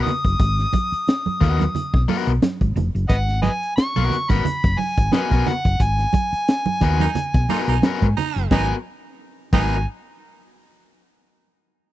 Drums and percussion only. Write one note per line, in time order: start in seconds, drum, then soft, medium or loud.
0.07 closed hi-hat medium
0.07 low conga loud
0.25 kick medium
0.25 closed hi-hat soft
0.40 kick loud
0.40 closed hi-hat medium
0.40 muted conga soft
0.59 snare soft
0.59 closed hi-hat soft
0.73 kick medium
0.73 closed hi-hat medium
0.73 muted conga soft
0.73 high conga medium
0.93 closed hi-hat soft
1.08 snare loud
1.08 closed hi-hat medium
1.08 muted conga soft
1.26 closed hi-hat soft
1.26 high conga medium
1.41 kick medium
1.41 closed hi-hat medium
1.41 muted conga soft
1.41 low conga medium
1.60 snare soft
1.60 closed hi-hat medium
1.60 high conga medium
1.75 closed hi-hat loud
1.75 low conga medium
1.94 kick loud
1.94 snare soft
2.08 open hi-hat medium
2.08 muted conga soft
2.08 high conga medium
2.27 closed hi-hat medium
2.42 snare loud
2.42 closed hi-hat medium
2.42 high conga medium
2.61 kick medium
2.61 closed hi-hat soft
2.61 high conga medium
2.76 closed hi-hat medium
2.76 low conga medium
2.96 closed hi-hat soft
3.09 kick loud
3.09 closed hi-hat medium
3.09 muted conga soft
3.29 snare soft
3.29 closed hi-hat soft
3.43 closed hi-hat medium
3.43 muted conga soft
3.43 high conga medium
3.63 closed hi-hat soft
3.77 snare loud
3.77 closed hi-hat medium
3.96 closed hi-hat soft
3.96 high conga medium
4.10 snare soft
4.10 closed hi-hat medium
4.10 low conga medium
4.29 kick medium
4.29 snare soft
4.29 closed hi-hat medium
4.29 high conga medium
4.45 closed hi-hat loud
4.45 low conga medium
4.64 kick loud
4.64 snare soft
4.64 closed hi-hat soft
4.78 open hi-hat medium
4.78 high conga medium
4.98 kick medium
4.98 closed hi-hat medium
5.12 snare loud
5.12 closed hi-hat medium
5.12 high conga medium
5.30 kick loud
5.30 snare soft
5.30 closed hi-hat soft
5.30 high conga medium
5.46 closed hi-hat medium
5.46 low conga medium
5.65 kick medium
5.65 closed hi-hat soft
5.80 kick loud
5.80 closed hi-hat medium
5.99 snare soft
5.99 closed hi-hat soft
6.13 kick loud
6.13 closed hi-hat medium
6.13 muted conga soft
6.13 high conga medium
6.33 closed hi-hat soft
6.48 snare loud
6.48 closed hi-hat medium
6.66 closed hi-hat soft
6.66 high conga loud
6.81 kick medium
6.81 closed hi-hat medium
6.81 muted conga soft
6.81 low conga medium
7.00 snare soft
7.00 closed hi-hat medium
7.00 high conga medium
7.15 closed hi-hat loud
7.15 muted conga soft
7.15 low conga medium
7.34 kick loud
7.34 snare soft
7.34 closed hi-hat soft
7.49 open hi-hat medium
7.49 high conga medium
7.68 closed hi-hat medium
7.82 snare loud
7.82 closed hi-hat medium
7.82 high conga medium
8.01 kick loud
8.01 closed hi-hat soft
8.01 high conga medium
8.17 closed hi-hat medium
8.17 muted conga soft
8.17 low conga medium
8.36 closed hi-hat soft
8.51 kick loud
8.51 snare medium
8.51 high conga medium
9.53 kick medium
9.53 crash medium
9.53 high conga medium